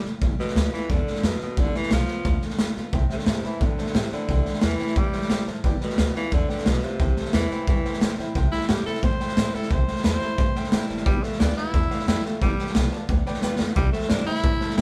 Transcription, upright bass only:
0.04 F1
0.22 G1
0.38 muted upright bass stroke
0.55 D2
0.90 E2
1.07 muted upright bass stroke
1.23 F2
1.41 muted upright bass stroke
1.57 G1
1.91 B1
2.25 D2
2.59 E2
2.76 F2
2.93 C2
3.10 muted upright bass stroke
3.27 G2
3.44 muted upright bass stroke
3.61 A2
3.78 muted upright bass stroke
3.95 A2
4.12 muted upright bass stroke
4.29 C2
4.63 E2
4.80 muted upright bass stroke
4.96 G2
5.14 muted upright bass stroke
5.31 A2
5.47 A2
5.64 G1
5.81 muted upright bass stroke
5.98 D2
6.32 E2
6.49 muted upright bass stroke
6.66 B1
7.00 C2
7.34 E2
7.51 muted upright bass stroke
7.67 G2
7.85 muted upright bass stroke
8.02 A2
8.19 A2
8.35 C2
8.70 G2
8.86 muted upright bass stroke
9.03 A2
9.20 muted upright bass stroke
9.37 A2
9.54 muted upright bass stroke
9.71 C2
9.88 muted upright bass stroke
10.05 E2
10.39 G2
10.56 muted upright bass stroke
10.72 A2
10.90 F#1
11.06 G1
11.40 D2
11.74 E2
11.91 muted upright bass stroke
12.08 F2
12.25 muted upright bass stroke
12.41 G1
12.59 muted upright bass stroke
12.75 B1
13.09 D2
13.43 E2
13.60 F2
13.76 C2
13.94 muted upright bass stroke
14.11 G2
14.27 muted upright bass stroke
14.43 A2
14.61 muted upright bass stroke
14.78 A2

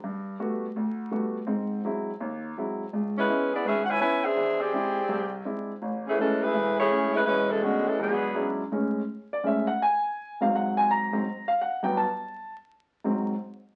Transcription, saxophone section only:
3.18 G#3 C#4 E4 B4
3.53 B3 E4 G#4 D5
3.66 C#4 G#4 B4 E5
3.84 F#5
3.89 E4 B4 C#5 G#5
4.00 E4 B4 C#5 G#5
4.24 D4 G#4 C5 E5
4.61 C4 G4 G#4 D5
6.07 E3 A3 C#4 G#4
6.20 E3 G#3 C#4 A4
6.43 A3 E4 G#4 B4
6.79 A3 E4 G#4 C#5
7.14 G#3 C#4 E4 B4
7.26 G#3 C#4 E4 B4
7.50 E3 G#3 C#4 A4
7.62 D3 G#3 B3 F#4
7.87 E3 G#3 C#4 A4
8.00 F#3 B3 D4 G#4

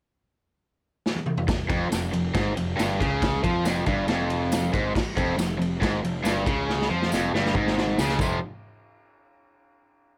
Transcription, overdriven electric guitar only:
1.49 muted overdriven electric guitar stroke
1.69 F2
1.90 F2
2.13 F2
2.35 G#2
2.56 F2
2.76 G2
3.00 C#3
3.44 F3
3.65 F2
3.87 G2
4.08 F2
4.73 G#2
4.96 muted overdriven electric guitar stroke
5.17 F2
5.38 F2
5.59 F2
5.81 G#2
6.03 F2
6.24 G2
6.46 C#3
6.90 F3
7.13 F2
7.34 G2
7.56 G#2
7.98 C#3
8.20 F2 C3 F3

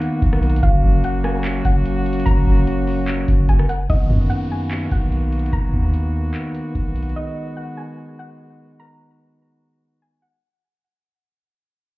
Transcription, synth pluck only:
0.63 F5
1.04 F#5
1.24 G#5
1.65 F#5
2.26 A#5
3.49 G#5
3.69 F#5
3.90 D#5
4.30 F#5
4.51 G#5
4.92 F#5
5.53 A#5
7.16 D#5
7.57 F#5
7.77 G#5
8.19 F#5
8.80 A#5
10.02 G#5
10.22 F#5

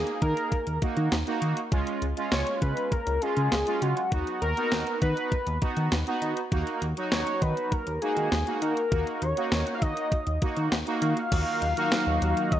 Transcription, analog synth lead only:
Already playing: G#4
0.22 A#4
2.32 C#5
2.62 B4
2.92 A#4
3.22 G#4
3.82 F#4
4.42 A#4
5.02 B4
7.12 C#5
7.42 B4
7.72 A#4
8.02 G#4
8.62 A#4
9.22 C#5
9.75 F5
9.82 D#5
11.02 F5
12.52 D#5

